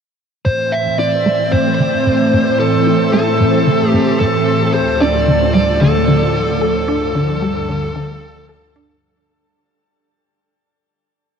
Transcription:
0.45 synth arpeggio sound A2, string machine A2 E3 C4, lead electric guitar C5
0.72 lead electric guitar E5
0.99 synth arpeggio sound E4, lead electric guitar D5
1.26 synth arpeggio sound A3
1.52 synth arpeggio sound A2, lead electric guitar C5
1.80 synth arpeggio sound D3
2.07 synth arpeggio sound A2
2.34 synth arpeggio sound A2
2.60 lead electric guitar A4
2.87 synth arpeggio sound E4
3.13 synth arpeggio sound A3, lead electric guitar A4
3.40 synth arpeggio sound A2
3.67 synth arpeggio sound D3
3.90 synth arpeggio sound A2, lead electric guitar G4
4.20 synth arpeggio sound A2, lead electric guitar A4
4.74 string machine D2 F3, synth arpeggio sound A4, lead electric guitar C5
5.00 synth arpeggio sound D4, lead electric guitar D5
5.28 synth arpeggio sound D3
5.54 synth arpeggio sound G3, lead electric guitar D5
5.81 synth arpeggio sound D3, lead electric guitar A4
6.08 synth arpeggio sound D3
6.61 synth arpeggio sound A4
6.88 string machine G2, synth arpeggio sound D4
7.15 synth arpeggio sound D3
7.42 synth arpeggio sound G3
7.69 synth arpeggio sound D3
7.96 synth arpeggio sound D3
8.49 synth arpeggio sound A4
8.76 synth arpeggio sound D4

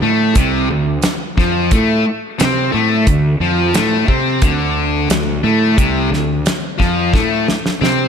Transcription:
0.02 fingered electric bass A2, distorted electric guitar A3
0.35 fingered electric bass C2, distorted electric guitar C3, kick, closed hi-hat
0.69 fingered electric bass D2, distorted electric guitar D3
1.02 snare, closed hi-hat
1.37 fingered electric bass F2, distorted electric guitar F3, kick, snare
1.71 fingered electric bass A2, distorted electric guitar A3, kick, closed hi-hat
2.39 fingered electric bass C3, distorted electric guitar C4, snare, closed hi-hat
2.72 fingered electric bass A2, distorted electric guitar A3
3.06 fingered electric bass D2, distorted electric guitar D3, kick, closed hi-hat
3.40 fingered electric bass F2, distorted electric guitar F3
3.74 fingered electric bass A2, distorted electric guitar A3, snare, closed hi-hat
4.08 fingered electric bass C3, distorted electric guitar C4, kick
4.42 fingered electric bass D2, distorted electric guitar D3, kick, closed hi-hat
5.10 fingered electric bass D2, distorted electric guitar D3, snare, closed hi-hat
5.44 fingered electric bass A2, distorted electric guitar A3
5.78 fingered electric bass C2, distorted electric guitar C3, kick, closed hi-hat
6.12 fingered electric bass D2, distorted electric guitar D3, snare
6.46 snare, closed hi-hat
6.78 fingered electric bass F2, distorted electric guitar F3, kick, snare
7.13 fingered electric bass A2, distorted electric guitar A3, kick, snare
7.48 snare
7.66 snare
7.81 fingered electric bass C3, distorted electric guitar C4, snare

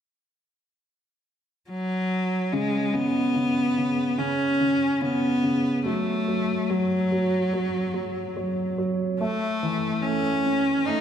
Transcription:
1.70 cello F#3
2.52 grand piano C#3, cello G#3
2.93 grand piano C#3, cello B3
3.36 grand piano C#3
3.78 grand piano C#3
4.18 grand piano C#3, cello C#4
4.60 grand piano C#3
5.02 grand piano C#3, cello B3
5.43 grand piano C#3
5.85 grand piano F#3, cello A3
6.28 grand piano F#3
6.70 cello F#3, grand piano F#3
7.12 grand piano F#3
7.53 grand piano F#3
7.94 grand piano F#3
8.37 grand piano F#3
8.78 grand piano F#3
9.20 cello A3, grand piano A3
9.63 grand piano E3
10.02 grand piano A3, cello C#4
10.46 grand piano C#4
10.85 grand piano A3, cello D#4

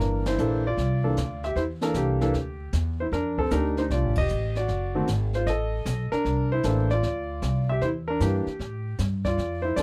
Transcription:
Already playing: grand piano E3 A#3 D4 A#4
0.00 upright bass G1, brush sweep, kick, snare
0.25 grand piano E4 C5, snare, ride
0.38 upright bass A#1, grand piano E3 A#3 D4 A4, hi-hat pedal
0.67 grand piano F4 D5
0.77 upright bass C2, brush sweep, kick, snare
1.04 grand piano E3 A#3 D4 A4
1.17 upright bass D2, kick, snare, hi-hat pedal
1.43 grand piano G4 E5, snare
1.55 upright bass E2, grand piano E4 C5, brush sweep, kick, snare
1.81 grand piano E3 A#3 D4 A4 A#4, snare
1.94 upright bass C2, grand piano G4, kick, snare, hi-hat pedal
1.98 grand piano A#3
2.21 grand piano E3 A#3 D4 A4, snare
2.34 upright bass D2, brush sweep, kick, snare
2.73 upright bass E2, kick, snare, hi-hat pedal
3.00 grand piano E4 C5
3.12 upright bass F2, grand piano D4 A#4, brush sweep, kick, snare
3.38 grand piano C4 A4, kick
3.51 upright bass D2, grand piano A3 D4 D#4 G4 A#4, snare, hi-hat pedal
3.77 grand piano D#4 C5, snare
3.90 upright bass C2, grand piano F4 D5, brush sweep, kick, snare
4.03 upright bass A1
4.15 upright bass F1, grand piano D#5, kick, ride
4.19 grand piano G4
4.28 upright bass A1, hi-hat pedal
4.55 grand piano D5, snare
4.59 grand piano F#4
4.68 upright bass F#1, brush sweep, kick, snare
4.95 grand piano D#3 A3 C4 F#4
5.07 upright bass G#1, kick, snare, hi-hat pedal
5.33 grand piano F4 C5, snare
5.46 upright bass A1, grand piano A4 D#5, brush sweep, kick, snare
5.85 upright bass B1, kick, snare, hi-hat pedal
6.12 grand piano D4 A#4, muted upright bass stroke, snare
6.25 upright bass C2, brush sweep, kick, snare
6.52 grand piano E4 C5
6.63 upright bass A1, grand piano E3 A#3 D4 A4, kick, snare, hi-hat pedal
6.90 grand piano F4 D5, snare
7.03 upright bass D2, brush sweep, kick, snare
7.42 upright bass C2, kick, snare, hi-hat pedal
7.69 grand piano G4 E5
7.81 upright bass E2, grand piano E4 C5, brush sweep, kick, snare
8.08 grand piano D4 A#4
8.20 upright bass G2, grand piano E3 A#3 D4 G4, kick, snare, hi-hat pedal
8.47 muted upright bass stroke, snare
8.59 upright bass A2, brush sweep, kick, snare
8.98 upright bass G2, kick, snare, hi-hat pedal
9.25 grand piano F4 D5, kick, snare
9.38 upright bass F2, brush sweep, kick, snare
9.62 grand piano E4 C5
9.76 upright bass E2, grand piano F3 C4 D4 F4 A4 D5, kick, snare, hi-hat pedal

